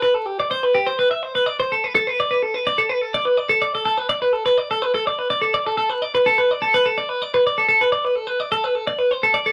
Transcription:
\new Staff \with { instrumentName = "Clean electric guitar" } { \time 4/4 \key a \dorian \tempo 4 = 126 b'16 a'16 g'16 d''16 c''16 b'16 g'16 c''16 b'16 e''16 c''16 b'16 d''16 c''16 a'16 b'16 | a'16 b'16 d''16 b'16 a'16 b'16 d''16 a'16 b'16 a'16 d''16 b'16 d''16 a'16 d''16 a'16 | a'16 b'16 d''16 b'16 a'16 b'16 d''16 a'16 b'16 a'16 d''16 b'16 d''16 a'16 d''16 a'16 | a'16 b'16 d''16 b'16 a'16 b'16 d''16 a'16 b'16 a'16 d''16 b'16 d''16 b'16 d''16 a'16 |
a'16 b'16 d''16 b'16 a'16 b'16 d''16 a'16 b'16 a'16 d''16 b'16 c''16 a'16 d''16 a'16 | }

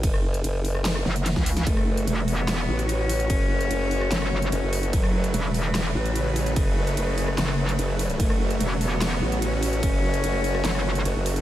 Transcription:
<<
  \new Staff \with { instrumentName = "Supersaw synth" } { \time 4/4 \key fis \minor \tempo 4 = 147 << { r1 | fis'1~ | fis'1 | b'1~ |
b'1 | fis'1~ | fis'1 | } \\ { r1 | <cis fis a>1~ | <cis fis a>1~ | <cis fis a>1~ |
<cis fis a>1~ | <cis fis a>1~ | <cis fis a>1 | } >> }
  \new Staff \with { instrumentName = "Cello" } { \time 4/4 \key fis \minor r1 | a4. b4. cis'4~ | cis'1 | fis4. e4. cis4~ |
cis1 | a4. b4. cis'4~ | cis'1 | }
  \new Staff \with { instrumentName = "Wobble bass" } { \clef bass \time 4/4 \key fis \minor fis,,4 fis,,4 fis,,8 r4. | fis,,4 r4. a,,4. | fis,,4 fis,,4 r4 fis,,16 fis,,8. | fis,,4 r4. a,,4. |
fis,,4 fis,,4 r4 fis,,4 | fis,,4 r4. a,,4. | fis,,4 fis,,4 r4 fis,,16 fis,,8. | }
  \new Staff \with { instrumentName = "Wobble bass" } { \clef bass \time 4/4 \key fis \minor r2 r8 fis,,8. cis,8. | r4 e,,4. r4. | r2 fis,,4 r4 | r4 e,,4. r4. |
r2 fis,,4 r4 | r4 e,,4. r4. | r2 fis,,4 r4 | }
  \new DrumStaff \with { instrumentName = "Drums" } \drummode { \time 4/4 <hh bd cymr>16 ss8 hh16 <hh cymr>8 hho16 ss16 <hc hh cymr sn>16 ss16 sn16 hh16 <hh cymr sn>16 <bd sn>16 hho16 <hh sn>16 | <hh bd cymr>16 ss8 hh16 <hh cymr>8 hho8 <hc hh cymr sn>8. hh16 <hh cymr>8 hho16 hh16 | <hh bd cymr>8. hh16 <hh cymr>8 hho16 ss16 <hc hh cymr sn>16 ss8 hh16 <hh cymr>8 hho16 hh16 | <hh bd cymr>16 ss8 hh16 <hh cymr>8 hho8 <hc hh cymr sn>8. hh16 <hh cymr>8 hho16 hh16 |
<hh bd cymr>8. hh16 <hh cymr>8 hho16 ss16 <hc hh cymr sn>16 ss8 hh16 <hh cymr>8 hho16 hh16 | <hh bd cymr>16 ss8 hh16 <hh cymr>8 hho8 <hc hh cymr sn>8. hh16 <hh cymr>8 hho16 hh16 | <hh bd cymr>8. hh16 <hh cymr>8 hho16 ss16 <hc hh cymr sn>16 ss8 hh16 <hh cymr>8 hho16 hh16 | }
>>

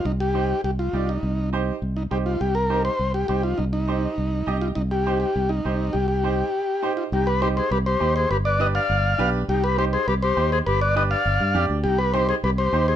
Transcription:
<<
  \new Staff \with { instrumentName = "Transistor combo organ" } { \time 4/4 \key c \minor \tempo 4 = 204 ees'8 g'4. g'8 f'4 ees'8~ | ees'4 r4. ees'8 g'8 f'8 | g'8 bes'4 c''4 g'8 g'8 f'8 | ees'8 ees'2. f'8 |
ees'8 g'4 g'4 ees'4. | g'8 g'2. f'8 | g'8 b'8 c''8 c''8 b'8 c''4 c''8 | b'8 d''8 ees''8 f''2 r8 |
g'8 b'8 c''8 c''8 b'8 c''4 c''8 | b'8 d''8 ees''8 f''2 r8 | g'8 b'8 c''8 c''8 b'8 c''4 c''8 | }
  \new Staff \with { instrumentName = "Clarinet" } { \time 4/4 \key c \minor r1 | r1 | r1 | r1 |
r1 | r1 | ees'8 g'8 g'8 aes'8 g'8 g'4 aes'8 | g'8 b'8 b'8 d''2 r8 |
ees'8 g'8 g'8 aes'8 g'8 g'4 aes'8 | g'8 b'8 b'8 d''2 r8 | ees'8 g'8 g'8 aes'8 g'8 g'4 aes'8 | }
  \new Staff \with { instrumentName = "Upright piano" } { \time 4/4 \key c \minor r4 <ees' g' c''>8 r4. <ees' g' d''>8 r8 | r4 <ees' g' c''>8 r4. <ees' g' c''>8 r8 | r4 <ees' g' c''>8 r4. <ees' g' c''>8 r8 | r4 <ees' g' c''>8 r4. <ees' g' ees''>8 r8 |
r4 <ees' g' c''>8 r4. <ees' g' c''>8 r8 | r4 <ees' g' c''>8 r4. <ees' g' c''>8 r8 | r4 <ees' g' c''>8 r4. <ees' g' c''>8 r8 | r4 <d' g' b'>8 r4. <d' g' b'>8 r8 |
r4 <ees' g' c''>8 r4. <ees' g' c''>8 r8 | r4 <d' g' b'>8 r4. <d' g' d''>8 r8 | r4 <ees' g' c''>8 r4. <ees' g' c''>8 r8 | }
  \new Staff \with { instrumentName = "Fingered electric bass" } { \clef bass \time 4/4 \key c \minor c,2 c,4 c,4 | c,2 c,4 c,4 | c,2 c,4 c,4 | c,2 c,4 c,4 |
c,2 c,4 c,4 | c,2 r2 | c,2 c,4 ees,4 | g,,2 g,,4 b,,4 |
c,2 c,4 ees,4 | g,,2 g,,8 g,8 f,8 d,8 | c,2 c,4 ees,4 | }
>>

